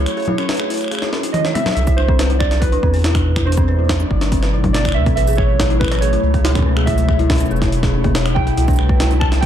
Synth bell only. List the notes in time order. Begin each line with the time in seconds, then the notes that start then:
0.17 G#4
0.28 E4
0.38 C#4
0.49 B4
0.60 G#4
0.70 E4
0.92 G#4
1.02 E4
1.13 C#4
1.23 E4
1.34 E4
1.45 C#5
1.66 A4
1.87 E4
1.98 D4
2.09 C4
2.19 B4
2.30 E4
2.40 D4
2.62 E4
2.72 D4
2.83 C4
2.94 B4
3.04 E4
3.15 D4
3.36 E4
3.47 D4
3.57 C4
3.68 B4
3.79 E4
3.89 D4
4.11 E4
4.21 D4
4.32 C4
4.43 B4
4.53 E4
4.64 D4
4.85 E4
4.96 D4
5.06 C4
5.17 B4
5.28 G#4
5.38 E4
5.60 G#4
5.70 E4
5.81 C#4
5.92 B4
6.02 G#4
6.13 E4
6.34 G#4
6.45 E4
6.55 C#4
6.66 B4
6.77 G#4
6.87 E4
7.09 G#4
7.19 E4
7.30 C#4
7.40 B4
7.51 G#4
7.62 E4
7.83 G#4
7.94 C#4
8.04 G#4
8.15 C#5
8.26 E4
8.36 G#4
8.47 G#4
8.57 E4
8.68 D4
8.79 B4
8.89 B4
9.00 E4
9.11 D4
9.32 E4
9.43 D4